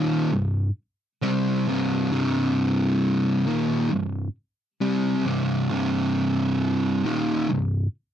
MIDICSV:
0, 0, Header, 1, 2, 480
1, 0, Start_track
1, 0, Key_signature, -3, "minor"
1, 0, Tempo, 898204
1, 1130, Time_signature, 4, 2, 24, 8
1, 4348, End_track
2, 0, Start_track
2, 0, Title_t, "Distorted electric guitar"
2, 0, Program_c, 0, 30
2, 0, Note_on_c, 0, 39, 87
2, 0, Note_on_c, 0, 46, 95
2, 0, Note_on_c, 0, 51, 99
2, 161, Note_off_c, 0, 39, 0
2, 162, Note_off_c, 0, 46, 0
2, 163, Note_off_c, 0, 51, 0
2, 170, Note_on_c, 0, 36, 69
2, 175, Note_on_c, 0, 43, 67
2, 362, Note_off_c, 0, 36, 0
2, 364, Note_off_c, 0, 43, 0
2, 653, Note_on_c, 0, 48, 97
2, 656, Note_on_c, 0, 60, 108
2, 657, Note_on_c, 0, 55, 102
2, 884, Note_off_c, 0, 48, 0
2, 886, Note_off_c, 0, 55, 0
2, 886, Note_off_c, 0, 60, 0
2, 894, Note_on_c, 0, 36, 91
2, 896, Note_on_c, 0, 43, 97
2, 899, Note_on_c, 0, 48, 103
2, 1124, Note_off_c, 0, 36, 0
2, 1126, Note_off_c, 0, 43, 0
2, 1128, Note_off_c, 0, 48, 0
2, 1130, Note_on_c, 0, 36, 85
2, 1134, Note_on_c, 0, 43, 94
2, 1137, Note_on_c, 0, 48, 106
2, 1843, Note_off_c, 0, 36, 0
2, 1845, Note_off_c, 0, 43, 0
2, 1847, Note_off_c, 0, 48, 0
2, 1848, Note_on_c, 0, 39, 85
2, 1850, Note_on_c, 0, 46, 95
2, 1853, Note_on_c, 0, 51, 97
2, 2082, Note_off_c, 0, 39, 0
2, 2083, Note_off_c, 0, 46, 0
2, 2084, Note_off_c, 0, 51, 0
2, 2085, Note_on_c, 0, 36, 68
2, 2088, Note_on_c, 0, 43, 77
2, 2280, Note_off_c, 0, 36, 0
2, 2281, Note_off_c, 0, 43, 0
2, 2570, Note_on_c, 0, 48, 103
2, 2572, Note_on_c, 0, 55, 106
2, 2574, Note_on_c, 0, 60, 105
2, 2803, Note_off_c, 0, 48, 0
2, 2804, Note_off_c, 0, 55, 0
2, 2805, Note_off_c, 0, 60, 0
2, 2809, Note_on_c, 0, 36, 89
2, 2812, Note_on_c, 0, 43, 104
2, 2812, Note_on_c, 0, 48, 109
2, 3042, Note_off_c, 0, 36, 0
2, 3044, Note_off_c, 0, 43, 0
2, 3044, Note_off_c, 0, 48, 0
2, 3048, Note_on_c, 0, 36, 91
2, 3051, Note_on_c, 0, 43, 101
2, 3052, Note_on_c, 0, 48, 118
2, 3762, Note_off_c, 0, 36, 0
2, 3764, Note_off_c, 0, 43, 0
2, 3764, Note_off_c, 0, 48, 0
2, 3766, Note_on_c, 0, 39, 89
2, 3770, Note_on_c, 0, 46, 83
2, 3772, Note_on_c, 0, 51, 102
2, 4001, Note_off_c, 0, 39, 0
2, 4003, Note_off_c, 0, 46, 0
2, 4003, Note_on_c, 0, 36, 67
2, 4004, Note_off_c, 0, 51, 0
2, 4007, Note_on_c, 0, 43, 71
2, 4199, Note_off_c, 0, 36, 0
2, 4201, Note_off_c, 0, 43, 0
2, 4348, End_track
0, 0, End_of_file